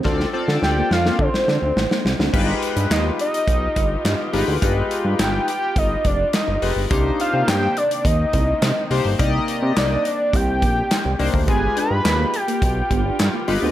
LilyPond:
<<
  \new Staff \with { instrumentName = "Analog synth lead" } { \time 4/4 \key g \phrygian \tempo 4 = 105 r4 g''8 f''8 c''4. r8 | r4 ees''8 ees''2 r8 | r4 g''8 g''8 ees''8 d''8 ees''8. r16 | r8 f''8 g''8 d''8 ees''4. r8 |
r4 d''8 d''8 g''4. r8 | aes''8 b''4 g''2 r8 | }
  \new Staff \with { instrumentName = "Analog polysynth" } { \time 4/4 \key g \phrygian <c' f' a' d''>8 <c' f' a' d''>4. r2 | <aes ees' f' g' b'>4. r2 <aes ees' f' g' b'>8 | <aes ees' f' g' b'>4. r2 <aes ees' f' g' b'>8 | <bes d' ees' g' c''>4. r2 <bes d' ees' g' c''>8 |
<bes ees' g' d'' ees''>4. r2 <bes d' ees' g' c''>8 | <aes ees' f' g' b'>4. r2 <aes ees' f' g' b'>8 | }
  \new Staff \with { instrumentName = "String section" } { \time 4/4 \key g \phrygian <d c' f'>1 | <b f' g'>1~ | <b f' g'>1 | <c ees bes c'>1~ |
<c ees bes c'>1 | <b f' g'>1 | }
  \new Staff \with { instrumentName = "Clean electric guitar" } { \time 4/4 \key g \phrygian a16 r16 c'16 r8 bes16 r16 bes16 r8 c'16 d'16 r16 bes16 r16 c'16 | r1 | r1 | r1 |
r1 | b16 r16 d'16 r8 bes16 r16 bes16 r8 b16 d'16 r16 bes16 r16 b16 | }
  \new Staff \with { instrumentName = "Analog synth bass" } { \clef bass \time 4/4 \key g \phrygian d,8 r16 d16 d,8 f,8 d16 r16 d16 d,16 a,,16 r16 c,16 d,16 | g,,8 r16 g,16 ees,8 r8 b,,8 g,,8 g,16 r16 g,,16 d,16 | g,,8 r16 g,16 g,,8 r8 g,,8 f,,8 r16 g,,16 f,,16 g,,16 | c,8 r16 c16 g,8 r8 ees,8 c,8 c16 r16 c,16 g,,16 |
c,8 r16 c16 c,8 r8 c,8 bes,,8 r16 c,16 c,16 d,16 | g,,8 r16 g,16 ees,8 r8 b,,8 g,,8 g,16 r16 g,,16 d,16 | }
  \new DrumStaff \with { instrumentName = "Drums" } \drummode { \time 4/4 <bd sn>16 sn8 sn16 sn8 sn16 sn16 bd16 sn16 sn8 sn16 sn16 sn16 sn16 | <cymc bd>8 hh16 hh16 <hc hh sn>8 hh16 hh16 <hh bd>8 <hh bd>8 <hc hh sn>8 hho8 | <hh bd>8 hh8 <hc hh sn>8 hh8 <hh bd>8 <hh bd>8 <hc hh sn>8 hho8 | <hh bd>8 hh8 <hc hh sn>8 hh16 hh16 <hh bd>8 <hh bd>8 <hc hh sn>8 hho8 |
<hh bd>8 hh8 <hc hh sn>8 hh8 <hh bd>8 <hh bd>8 <hc hh sn>8 hho16 bd16 | <hh bd>8 hh8 <hc hh sn>8 hh16 hh16 <hh bd>8 <hh bd>8 <hc hh sn>8 hho8 | }
>>